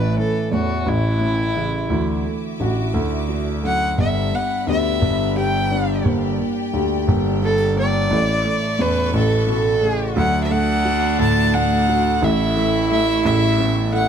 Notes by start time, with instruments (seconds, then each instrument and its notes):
Already playing: grand piano A1, steel-string acoustic guitar A2 E3 A3 C#4 E4, felt piano E3 C#4, fiddle B4
0.17 felt piano E3, fiddle A4
0.51 grand piano E2, steel-string acoustic guitar A3 C#4 E4, felt piano A3, fiddle F#4
0.86 grand piano A1, steel-string acoustic guitar A2, felt piano E3, fiddle E4
1.21 steel-string acoustic guitar B2, felt piano C#4
1.55 steel-string acoustic guitar C#3, felt piano E3
1.89 steel-string acoustic guitar D2, grand piano D2, felt piano E3 F#4, string section F#4 E5 D6
2.25 felt piano A3
2.60 grand piano A1, steel-string acoustic guitar A3 E4 F#4, felt piano D4
2.93 steel-string acoustic guitar D2, grand piano D2, felt piano A3
3.28 steel-string acoustic guitar E2, felt piano F#4
3.63 steel-string acoustic guitar F#2, felt piano A3, fiddle F#5
3.98 grand piano G1, steel-string acoustic guitar G2, felt piano B3 G4, string section G4 D5 B5, fiddle E5
4.32 felt piano B3, fiddle F#5
4.66 grand piano D2, steel-string acoustic guitar B3 D4 G4, felt piano D4, fiddle E5
5.01 grand piano G1, felt piano B3
5.36 felt piano G4, steel-string acoustic guitar G4, fiddle G5
5.70 felt piano B3, steel-string acoustic guitar D4
6.03 grand piano G1, steel-string acoustic guitar G2, felt piano A#3 G4, string section G5
6.39 felt piano A#3
6.73 grand piano D2, steel-string acoustic guitar A#3 D4 G4, felt piano D4
7.08 grand piano G1, felt piano A#3
7.42 steel-string acoustic guitar E4, felt piano G4, fiddle A4
7.58 steel-string acoustic guitar G4
7.76 felt piano A#3, steel-string acoustic guitar D4, fiddle D5
8.09 grand piano A1, steel-string acoustic guitar A2, felt piano E3 A4, string section A4 E5 C#6
8.45 felt piano A3
8.79 grand piano E2, felt piano C#4, steel-string acoustic guitar E4 A4, fiddle B4
9.12 grand piano A1, steel-string acoustic guitar A2, felt piano A3, fiddle A4
9.47 steel-string acoustic guitar B2, felt piano A4, fiddle A4
9.81 steel-string acoustic guitar C#3, felt piano A3
10.15 steel-string acoustic guitar D2, grand piano D2, felt piano F#3 F#4, cello D4, string section A4 F#5 D6, fiddle F#5
10.44 fiddle E5
10.50 steel-string acoustic guitar D3, felt piano A3, fiddle F#5
10.85 steel-string acoustic guitar A3, felt piano F#4
11.19 grand piano D2, steel-string acoustic guitar A2, felt piano A3, fiddle A5
11.54 steel-string acoustic guitar A3, felt piano D4, fiddle F#5
11.88 felt piano F#4, steel-string acoustic guitar F#4
12.22 grand piano A1, steel-string acoustic guitar A2, felt piano E3 A4, cello E4, string section E5 C#6, fiddle E5
12.57 steel-string acoustic guitar E3, felt piano A3
12.90 steel-string acoustic guitar A3, felt piano A4, fiddle E5
13.25 grand piano A1, steel-string acoustic guitar E2, felt piano A3, fiddle E5
13.59 steel-string acoustic guitar A3, felt piano C#4
13.93 steel-string acoustic guitar E4, felt piano A4, fiddle F#5